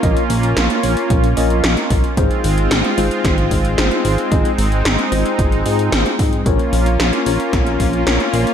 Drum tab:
HH |xxoxxxoxxxoxxxox|xxoxxxoxxxoxxxox|xxoxxxoxxxoxxxox|xxoxxxoxxxoxxxox|
SD |----o-------o---|----o---o---o---|----o-------o---|----o---o---o---|
BD |o-------o-----o-|o-------o-o-----|o-------o-----o-|o-------o-o-----|